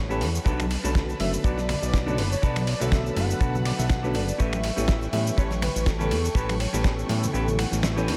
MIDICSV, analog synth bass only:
0, 0, Header, 1, 2, 480
1, 0, Start_track
1, 0, Key_signature, 2, "minor"
1, 0, Tempo, 491803
1, 447, Time_signature, 4, 2, 24, 8
1, 7972, End_track
2, 0, Start_track
2, 0, Title_t, "Analog synth bass"
2, 0, Program_c, 0, 38
2, 0, Note_on_c, 0, 33, 96
2, 210, Note_on_c, 0, 40, 102
2, 224, Note_off_c, 0, 33, 0
2, 382, Note_off_c, 0, 40, 0
2, 447, Note_on_c, 0, 35, 104
2, 754, Note_off_c, 0, 35, 0
2, 822, Note_on_c, 0, 35, 86
2, 1115, Note_off_c, 0, 35, 0
2, 1170, Note_on_c, 0, 30, 98
2, 1342, Note_off_c, 0, 30, 0
2, 1410, Note_on_c, 0, 35, 93
2, 1716, Note_off_c, 0, 35, 0
2, 1779, Note_on_c, 0, 35, 91
2, 2129, Note_on_c, 0, 30, 101
2, 2143, Note_off_c, 0, 35, 0
2, 2301, Note_off_c, 0, 30, 0
2, 2373, Note_on_c, 0, 35, 103
2, 2677, Note_off_c, 0, 35, 0
2, 2742, Note_on_c, 0, 35, 85
2, 3035, Note_off_c, 0, 35, 0
2, 3087, Note_on_c, 0, 30, 100
2, 3260, Note_off_c, 0, 30, 0
2, 3327, Note_on_c, 0, 35, 94
2, 3634, Note_off_c, 0, 35, 0
2, 3701, Note_on_c, 0, 35, 98
2, 4048, Note_on_c, 0, 30, 97
2, 4063, Note_off_c, 0, 35, 0
2, 4221, Note_off_c, 0, 30, 0
2, 4295, Note_on_c, 0, 33, 103
2, 4598, Note_off_c, 0, 33, 0
2, 4659, Note_on_c, 0, 33, 89
2, 4954, Note_off_c, 0, 33, 0
2, 5005, Note_on_c, 0, 45, 99
2, 5180, Note_off_c, 0, 45, 0
2, 5249, Note_on_c, 0, 33, 96
2, 5555, Note_off_c, 0, 33, 0
2, 5621, Note_on_c, 0, 33, 94
2, 5965, Note_on_c, 0, 40, 101
2, 5979, Note_off_c, 0, 33, 0
2, 6139, Note_off_c, 0, 40, 0
2, 6198, Note_on_c, 0, 33, 109
2, 6509, Note_off_c, 0, 33, 0
2, 6575, Note_on_c, 0, 33, 84
2, 6871, Note_off_c, 0, 33, 0
2, 6924, Note_on_c, 0, 45, 100
2, 7099, Note_off_c, 0, 45, 0
2, 7164, Note_on_c, 0, 33, 97
2, 7472, Note_off_c, 0, 33, 0
2, 7536, Note_on_c, 0, 33, 93
2, 7886, Note_on_c, 0, 40, 102
2, 7901, Note_off_c, 0, 33, 0
2, 7972, Note_off_c, 0, 40, 0
2, 7972, End_track
0, 0, End_of_file